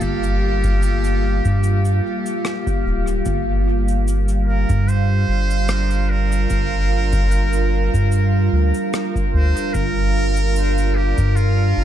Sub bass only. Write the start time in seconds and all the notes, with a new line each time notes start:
0.02 G1
1.45 G2
2.85 D1
3.26 G1
4.70 G2
5.28 G1
6.50 G1
7.94 G2
8.53 D2
9.34 D2
9.75 G1
11.18 G2
11.77 G1